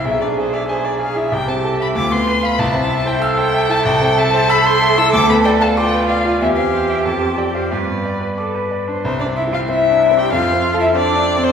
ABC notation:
X:1
M:2/4
L:1/16
Q:1/4=94
K:Am
V:1 name="Violin"
e d c d c d f e | g a2 b d' c'2 b | a3 g f g2 a | [K:C] g2 a2 b c'2 e' |
d' b g a g2 f2 | e f2 g a2 g f | d4 z4 | c d e f e3 g |
f3 e d3 c |]
V:2 name="Grand piano"
B,,, D ^G e ^g d G E | C,, C A e D,, B, B f | C,, C e c e' c e E | [K:C] C,, C e c e' c e E |
D,, B, d f d' B d F | E,, C c e F,, C d c | G,, B, d B d' B d D | (3C,,2 C2 E2 (3C2 D2 C2 |
(3F,,2 C2 A2 (3C2 D2 C2 |]
V:3 name="Cello"
^G4 G4 | G4 F4 | E4 A4- | [K:C] A8- |
A4 F4 | G8 | B4 A B2 c | C D E F E3 G |
F3 E D3 C |]